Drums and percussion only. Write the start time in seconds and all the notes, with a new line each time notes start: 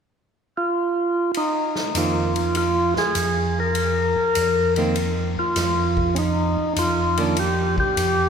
1.34 ride
1.76 snare
1.95 hi-hat pedal, ride
2.36 ride
2.55 ride
2.96 snare
3.15 hi-hat pedal, ride
3.75 ride
4.35 hi-hat pedal, ride
4.76 ride
4.96 ride
5.56 snare, hi-hat pedal, ride
5.97 kick
6.16 ride
6.76 hi-hat pedal, ride
7.17 ride
7.36 ride
7.78 kick
7.97 hi-hat pedal, ride